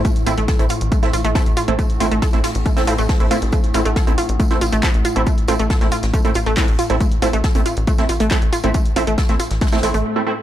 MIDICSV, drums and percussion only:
0, 0, Header, 1, 2, 480
1, 0, Start_track
1, 0, Key_signature, 0, "minor"
1, 0, Tempo, 434783
1, 54, Time_signature, 4, 2, 24, 8
1, 11508, End_track
2, 0, Start_track
2, 0, Title_t, "Drums"
2, 51, Note_on_c, 9, 54, 89
2, 54, Note_on_c, 9, 36, 124
2, 54, Note_on_c, 9, 42, 84
2, 162, Note_off_c, 9, 54, 0
2, 164, Note_off_c, 9, 36, 0
2, 164, Note_off_c, 9, 42, 0
2, 176, Note_on_c, 9, 42, 55
2, 286, Note_off_c, 9, 42, 0
2, 293, Note_on_c, 9, 46, 113
2, 293, Note_on_c, 9, 54, 66
2, 403, Note_off_c, 9, 46, 0
2, 404, Note_off_c, 9, 54, 0
2, 415, Note_on_c, 9, 42, 53
2, 525, Note_off_c, 9, 42, 0
2, 533, Note_on_c, 9, 36, 120
2, 533, Note_on_c, 9, 38, 106
2, 533, Note_on_c, 9, 42, 83
2, 534, Note_on_c, 9, 54, 83
2, 643, Note_off_c, 9, 42, 0
2, 644, Note_off_c, 9, 36, 0
2, 644, Note_off_c, 9, 38, 0
2, 645, Note_off_c, 9, 54, 0
2, 656, Note_on_c, 9, 42, 44
2, 762, Note_on_c, 9, 54, 72
2, 767, Note_off_c, 9, 42, 0
2, 773, Note_on_c, 9, 46, 112
2, 873, Note_off_c, 9, 54, 0
2, 884, Note_off_c, 9, 46, 0
2, 895, Note_on_c, 9, 42, 55
2, 1006, Note_off_c, 9, 42, 0
2, 1013, Note_on_c, 9, 36, 126
2, 1013, Note_on_c, 9, 42, 79
2, 1014, Note_on_c, 9, 54, 81
2, 1123, Note_off_c, 9, 42, 0
2, 1124, Note_off_c, 9, 36, 0
2, 1125, Note_off_c, 9, 54, 0
2, 1135, Note_on_c, 9, 42, 52
2, 1144, Note_on_c, 9, 38, 49
2, 1246, Note_off_c, 9, 42, 0
2, 1248, Note_on_c, 9, 54, 64
2, 1253, Note_on_c, 9, 46, 108
2, 1254, Note_off_c, 9, 38, 0
2, 1358, Note_off_c, 9, 54, 0
2, 1363, Note_off_c, 9, 46, 0
2, 1370, Note_on_c, 9, 42, 40
2, 1375, Note_off_c, 9, 42, 0
2, 1375, Note_on_c, 9, 42, 51
2, 1485, Note_off_c, 9, 42, 0
2, 1492, Note_on_c, 9, 38, 113
2, 1493, Note_on_c, 9, 36, 127
2, 1494, Note_on_c, 9, 46, 62
2, 1497, Note_on_c, 9, 54, 90
2, 1603, Note_off_c, 9, 38, 0
2, 1604, Note_off_c, 9, 36, 0
2, 1604, Note_off_c, 9, 46, 0
2, 1608, Note_off_c, 9, 54, 0
2, 1616, Note_on_c, 9, 42, 52
2, 1726, Note_off_c, 9, 42, 0
2, 1728, Note_on_c, 9, 54, 74
2, 1733, Note_on_c, 9, 46, 108
2, 1838, Note_off_c, 9, 54, 0
2, 1843, Note_off_c, 9, 46, 0
2, 1855, Note_on_c, 9, 42, 52
2, 1965, Note_off_c, 9, 42, 0
2, 1973, Note_on_c, 9, 36, 121
2, 1973, Note_on_c, 9, 42, 81
2, 1973, Note_on_c, 9, 54, 94
2, 2083, Note_off_c, 9, 36, 0
2, 2083, Note_off_c, 9, 42, 0
2, 2083, Note_off_c, 9, 54, 0
2, 2095, Note_on_c, 9, 42, 52
2, 2206, Note_off_c, 9, 42, 0
2, 2213, Note_on_c, 9, 46, 109
2, 2214, Note_on_c, 9, 54, 68
2, 2323, Note_off_c, 9, 46, 0
2, 2324, Note_off_c, 9, 54, 0
2, 2335, Note_on_c, 9, 42, 52
2, 2445, Note_off_c, 9, 42, 0
2, 2452, Note_on_c, 9, 38, 107
2, 2453, Note_on_c, 9, 36, 120
2, 2453, Note_on_c, 9, 42, 80
2, 2458, Note_on_c, 9, 54, 86
2, 2562, Note_off_c, 9, 38, 0
2, 2563, Note_off_c, 9, 36, 0
2, 2563, Note_off_c, 9, 42, 0
2, 2569, Note_off_c, 9, 54, 0
2, 2570, Note_on_c, 9, 38, 50
2, 2575, Note_on_c, 9, 42, 51
2, 2681, Note_off_c, 9, 38, 0
2, 2685, Note_off_c, 9, 42, 0
2, 2690, Note_on_c, 9, 38, 98
2, 2693, Note_on_c, 9, 46, 109
2, 2694, Note_off_c, 9, 46, 0
2, 2694, Note_on_c, 9, 46, 78
2, 2801, Note_off_c, 9, 38, 0
2, 2805, Note_off_c, 9, 46, 0
2, 2815, Note_on_c, 9, 42, 50
2, 2925, Note_off_c, 9, 42, 0
2, 2933, Note_on_c, 9, 36, 120
2, 2933, Note_on_c, 9, 42, 78
2, 2933, Note_on_c, 9, 54, 58
2, 3044, Note_off_c, 9, 36, 0
2, 3044, Note_off_c, 9, 42, 0
2, 3044, Note_off_c, 9, 54, 0
2, 3055, Note_on_c, 9, 42, 52
2, 3058, Note_on_c, 9, 46, 71
2, 3062, Note_on_c, 9, 38, 108
2, 3166, Note_off_c, 9, 42, 0
2, 3169, Note_off_c, 9, 46, 0
2, 3173, Note_off_c, 9, 38, 0
2, 3173, Note_on_c, 9, 46, 109
2, 3283, Note_off_c, 9, 46, 0
2, 3291, Note_on_c, 9, 54, 62
2, 3296, Note_on_c, 9, 46, 61
2, 3401, Note_off_c, 9, 54, 0
2, 3406, Note_off_c, 9, 46, 0
2, 3413, Note_on_c, 9, 36, 125
2, 3413, Note_on_c, 9, 38, 111
2, 3413, Note_on_c, 9, 42, 75
2, 3421, Note_on_c, 9, 46, 83
2, 3523, Note_off_c, 9, 38, 0
2, 3524, Note_off_c, 9, 36, 0
2, 3524, Note_off_c, 9, 42, 0
2, 3531, Note_off_c, 9, 46, 0
2, 3536, Note_on_c, 9, 42, 50
2, 3646, Note_off_c, 9, 42, 0
2, 3654, Note_on_c, 9, 46, 108
2, 3663, Note_on_c, 9, 54, 70
2, 3764, Note_off_c, 9, 46, 0
2, 3774, Note_off_c, 9, 54, 0
2, 3776, Note_on_c, 9, 42, 51
2, 3887, Note_off_c, 9, 42, 0
2, 3888, Note_on_c, 9, 54, 89
2, 3893, Note_on_c, 9, 36, 117
2, 3894, Note_on_c, 9, 42, 77
2, 3999, Note_off_c, 9, 54, 0
2, 4004, Note_off_c, 9, 36, 0
2, 4005, Note_off_c, 9, 42, 0
2, 4016, Note_on_c, 9, 42, 50
2, 4126, Note_on_c, 9, 54, 63
2, 4127, Note_off_c, 9, 42, 0
2, 4134, Note_on_c, 9, 46, 107
2, 4237, Note_off_c, 9, 54, 0
2, 4244, Note_off_c, 9, 46, 0
2, 4256, Note_on_c, 9, 42, 51
2, 4367, Note_off_c, 9, 42, 0
2, 4373, Note_on_c, 9, 36, 117
2, 4374, Note_on_c, 9, 42, 77
2, 4379, Note_on_c, 9, 38, 122
2, 4379, Note_on_c, 9, 54, 84
2, 4484, Note_off_c, 9, 36, 0
2, 4485, Note_off_c, 9, 42, 0
2, 4489, Note_off_c, 9, 38, 0
2, 4489, Note_off_c, 9, 54, 0
2, 4496, Note_on_c, 9, 42, 47
2, 4497, Note_off_c, 9, 42, 0
2, 4497, Note_on_c, 9, 42, 48
2, 4607, Note_off_c, 9, 42, 0
2, 4613, Note_on_c, 9, 46, 104
2, 4613, Note_on_c, 9, 54, 69
2, 4723, Note_off_c, 9, 46, 0
2, 4724, Note_off_c, 9, 54, 0
2, 4736, Note_on_c, 9, 42, 51
2, 4847, Note_off_c, 9, 42, 0
2, 4853, Note_on_c, 9, 36, 114
2, 4854, Note_on_c, 9, 42, 75
2, 4855, Note_on_c, 9, 54, 90
2, 4964, Note_off_c, 9, 36, 0
2, 4964, Note_off_c, 9, 42, 0
2, 4965, Note_off_c, 9, 54, 0
2, 4976, Note_on_c, 9, 42, 49
2, 4983, Note_on_c, 9, 38, 50
2, 5086, Note_off_c, 9, 42, 0
2, 5093, Note_on_c, 9, 46, 104
2, 5094, Note_off_c, 9, 38, 0
2, 5097, Note_on_c, 9, 54, 70
2, 5204, Note_off_c, 9, 46, 0
2, 5207, Note_off_c, 9, 54, 0
2, 5216, Note_on_c, 9, 42, 49
2, 5326, Note_off_c, 9, 42, 0
2, 5326, Note_on_c, 9, 54, 93
2, 5332, Note_on_c, 9, 38, 122
2, 5334, Note_on_c, 9, 36, 121
2, 5334, Note_on_c, 9, 39, 110
2, 5334, Note_on_c, 9, 46, 60
2, 5436, Note_off_c, 9, 54, 0
2, 5442, Note_off_c, 9, 38, 0
2, 5444, Note_off_c, 9, 36, 0
2, 5444, Note_off_c, 9, 39, 0
2, 5444, Note_off_c, 9, 46, 0
2, 5456, Note_on_c, 9, 42, 49
2, 5567, Note_off_c, 9, 42, 0
2, 5569, Note_on_c, 9, 54, 72
2, 5574, Note_on_c, 9, 46, 102
2, 5680, Note_off_c, 9, 54, 0
2, 5684, Note_off_c, 9, 46, 0
2, 5696, Note_on_c, 9, 42, 51
2, 5807, Note_off_c, 9, 42, 0
2, 5812, Note_on_c, 9, 54, 91
2, 5813, Note_on_c, 9, 36, 112
2, 5814, Note_on_c, 9, 42, 76
2, 5923, Note_off_c, 9, 54, 0
2, 5924, Note_off_c, 9, 36, 0
2, 5925, Note_off_c, 9, 42, 0
2, 5937, Note_on_c, 9, 42, 51
2, 6046, Note_on_c, 9, 54, 70
2, 6048, Note_off_c, 9, 42, 0
2, 6054, Note_on_c, 9, 46, 102
2, 6156, Note_off_c, 9, 54, 0
2, 6165, Note_off_c, 9, 46, 0
2, 6177, Note_on_c, 9, 42, 51
2, 6287, Note_off_c, 9, 42, 0
2, 6293, Note_on_c, 9, 36, 114
2, 6294, Note_on_c, 9, 42, 78
2, 6294, Note_on_c, 9, 54, 85
2, 6299, Note_on_c, 9, 38, 116
2, 6404, Note_off_c, 9, 36, 0
2, 6404, Note_off_c, 9, 42, 0
2, 6404, Note_off_c, 9, 54, 0
2, 6410, Note_off_c, 9, 38, 0
2, 6417, Note_on_c, 9, 42, 48
2, 6419, Note_on_c, 9, 38, 49
2, 6527, Note_off_c, 9, 42, 0
2, 6528, Note_on_c, 9, 54, 61
2, 6529, Note_off_c, 9, 38, 0
2, 6534, Note_on_c, 9, 46, 101
2, 6638, Note_off_c, 9, 54, 0
2, 6644, Note_off_c, 9, 46, 0
2, 6656, Note_on_c, 9, 42, 49
2, 6657, Note_on_c, 9, 38, 62
2, 6767, Note_off_c, 9, 42, 0
2, 6768, Note_off_c, 9, 38, 0
2, 6774, Note_on_c, 9, 36, 113
2, 6774, Note_on_c, 9, 42, 76
2, 6782, Note_on_c, 9, 54, 94
2, 6884, Note_off_c, 9, 36, 0
2, 6884, Note_off_c, 9, 42, 0
2, 6892, Note_off_c, 9, 54, 0
2, 6897, Note_on_c, 9, 42, 50
2, 6900, Note_off_c, 9, 42, 0
2, 6900, Note_on_c, 9, 42, 44
2, 7003, Note_on_c, 9, 54, 65
2, 7010, Note_off_c, 9, 42, 0
2, 7014, Note_on_c, 9, 46, 101
2, 7113, Note_off_c, 9, 54, 0
2, 7124, Note_off_c, 9, 46, 0
2, 7135, Note_on_c, 9, 46, 58
2, 7246, Note_off_c, 9, 46, 0
2, 7253, Note_on_c, 9, 36, 117
2, 7253, Note_on_c, 9, 39, 114
2, 7253, Note_on_c, 9, 42, 71
2, 7255, Note_on_c, 9, 38, 107
2, 7257, Note_on_c, 9, 46, 83
2, 7363, Note_off_c, 9, 39, 0
2, 7363, Note_off_c, 9, 42, 0
2, 7364, Note_off_c, 9, 36, 0
2, 7366, Note_off_c, 9, 38, 0
2, 7367, Note_off_c, 9, 46, 0
2, 7375, Note_on_c, 9, 42, 49
2, 7486, Note_off_c, 9, 42, 0
2, 7494, Note_on_c, 9, 46, 100
2, 7495, Note_on_c, 9, 54, 68
2, 7604, Note_off_c, 9, 46, 0
2, 7605, Note_off_c, 9, 54, 0
2, 7616, Note_on_c, 9, 42, 48
2, 7726, Note_off_c, 9, 42, 0
2, 7733, Note_on_c, 9, 36, 110
2, 7733, Note_on_c, 9, 42, 82
2, 7738, Note_on_c, 9, 54, 86
2, 7844, Note_off_c, 9, 36, 0
2, 7844, Note_off_c, 9, 42, 0
2, 7849, Note_off_c, 9, 54, 0
2, 7856, Note_on_c, 9, 42, 51
2, 7966, Note_off_c, 9, 42, 0
2, 7973, Note_on_c, 9, 46, 103
2, 7975, Note_on_c, 9, 54, 67
2, 8084, Note_off_c, 9, 46, 0
2, 8085, Note_off_c, 9, 54, 0
2, 8096, Note_on_c, 9, 42, 52
2, 8206, Note_off_c, 9, 42, 0
2, 8213, Note_on_c, 9, 36, 111
2, 8213, Note_on_c, 9, 38, 116
2, 8213, Note_on_c, 9, 42, 81
2, 8213, Note_on_c, 9, 54, 81
2, 8323, Note_off_c, 9, 42, 0
2, 8323, Note_off_c, 9, 54, 0
2, 8324, Note_off_c, 9, 36, 0
2, 8324, Note_off_c, 9, 38, 0
2, 8335, Note_on_c, 9, 42, 51
2, 8339, Note_off_c, 9, 42, 0
2, 8339, Note_on_c, 9, 42, 41
2, 8449, Note_off_c, 9, 42, 0
2, 8453, Note_on_c, 9, 46, 98
2, 8454, Note_on_c, 9, 54, 69
2, 8563, Note_off_c, 9, 46, 0
2, 8564, Note_off_c, 9, 54, 0
2, 8575, Note_on_c, 9, 42, 52
2, 8686, Note_off_c, 9, 42, 0
2, 8693, Note_on_c, 9, 42, 78
2, 8694, Note_on_c, 9, 36, 111
2, 8695, Note_on_c, 9, 54, 88
2, 8803, Note_off_c, 9, 42, 0
2, 8804, Note_off_c, 9, 36, 0
2, 8805, Note_off_c, 9, 54, 0
2, 8814, Note_on_c, 9, 42, 52
2, 8819, Note_on_c, 9, 38, 49
2, 8925, Note_off_c, 9, 42, 0
2, 8929, Note_off_c, 9, 38, 0
2, 8932, Note_on_c, 9, 46, 98
2, 8934, Note_on_c, 9, 54, 66
2, 9042, Note_off_c, 9, 46, 0
2, 9045, Note_off_c, 9, 54, 0
2, 9054, Note_on_c, 9, 42, 52
2, 9057, Note_off_c, 9, 42, 0
2, 9057, Note_on_c, 9, 42, 45
2, 9164, Note_on_c, 9, 38, 105
2, 9167, Note_off_c, 9, 42, 0
2, 9173, Note_on_c, 9, 39, 118
2, 9173, Note_on_c, 9, 46, 58
2, 9174, Note_on_c, 9, 36, 114
2, 9184, Note_on_c, 9, 54, 83
2, 9275, Note_off_c, 9, 38, 0
2, 9283, Note_off_c, 9, 39, 0
2, 9283, Note_off_c, 9, 46, 0
2, 9284, Note_off_c, 9, 36, 0
2, 9295, Note_off_c, 9, 54, 0
2, 9295, Note_on_c, 9, 42, 51
2, 9406, Note_off_c, 9, 42, 0
2, 9413, Note_on_c, 9, 46, 97
2, 9421, Note_on_c, 9, 54, 75
2, 9523, Note_off_c, 9, 46, 0
2, 9532, Note_off_c, 9, 54, 0
2, 9535, Note_on_c, 9, 42, 51
2, 9645, Note_off_c, 9, 42, 0
2, 9652, Note_on_c, 9, 42, 82
2, 9654, Note_on_c, 9, 36, 115
2, 9656, Note_on_c, 9, 54, 92
2, 9763, Note_off_c, 9, 42, 0
2, 9764, Note_off_c, 9, 36, 0
2, 9767, Note_off_c, 9, 54, 0
2, 9776, Note_on_c, 9, 42, 55
2, 9886, Note_off_c, 9, 42, 0
2, 9894, Note_on_c, 9, 46, 104
2, 9898, Note_on_c, 9, 54, 65
2, 10004, Note_off_c, 9, 46, 0
2, 10008, Note_off_c, 9, 54, 0
2, 10015, Note_on_c, 9, 42, 55
2, 10126, Note_off_c, 9, 42, 0
2, 10133, Note_on_c, 9, 42, 82
2, 10134, Note_on_c, 9, 36, 113
2, 10137, Note_on_c, 9, 38, 117
2, 10137, Note_on_c, 9, 54, 83
2, 10244, Note_off_c, 9, 36, 0
2, 10244, Note_off_c, 9, 42, 0
2, 10247, Note_off_c, 9, 38, 0
2, 10248, Note_off_c, 9, 54, 0
2, 10256, Note_on_c, 9, 42, 51
2, 10261, Note_on_c, 9, 38, 51
2, 10366, Note_off_c, 9, 42, 0
2, 10369, Note_on_c, 9, 54, 69
2, 10372, Note_off_c, 9, 38, 0
2, 10374, Note_on_c, 9, 46, 100
2, 10479, Note_off_c, 9, 54, 0
2, 10484, Note_off_c, 9, 46, 0
2, 10496, Note_on_c, 9, 42, 53
2, 10499, Note_on_c, 9, 38, 59
2, 10606, Note_off_c, 9, 42, 0
2, 10610, Note_off_c, 9, 38, 0
2, 10613, Note_on_c, 9, 42, 79
2, 10614, Note_on_c, 9, 36, 115
2, 10616, Note_on_c, 9, 54, 69
2, 10617, Note_on_c, 9, 38, 95
2, 10672, Note_off_c, 9, 38, 0
2, 10672, Note_on_c, 9, 38, 88
2, 10683, Note_off_c, 9, 54, 0
2, 10683, Note_on_c, 9, 54, 74
2, 10724, Note_off_c, 9, 42, 0
2, 10725, Note_off_c, 9, 36, 0
2, 10736, Note_on_c, 9, 42, 53
2, 10737, Note_off_c, 9, 54, 0
2, 10737, Note_on_c, 9, 54, 70
2, 10740, Note_off_c, 9, 38, 0
2, 10740, Note_on_c, 9, 38, 80
2, 10792, Note_off_c, 9, 38, 0
2, 10792, Note_on_c, 9, 38, 84
2, 10797, Note_off_c, 9, 54, 0
2, 10797, Note_on_c, 9, 54, 62
2, 10846, Note_off_c, 9, 42, 0
2, 10852, Note_off_c, 9, 54, 0
2, 10852, Note_on_c, 9, 54, 75
2, 10854, Note_on_c, 9, 46, 101
2, 10855, Note_off_c, 9, 38, 0
2, 10855, Note_on_c, 9, 38, 98
2, 10962, Note_off_c, 9, 54, 0
2, 10964, Note_off_c, 9, 46, 0
2, 10965, Note_off_c, 9, 38, 0
2, 10976, Note_on_c, 9, 42, 42
2, 10976, Note_on_c, 9, 46, 58
2, 11086, Note_off_c, 9, 42, 0
2, 11086, Note_off_c, 9, 46, 0
2, 11508, End_track
0, 0, End_of_file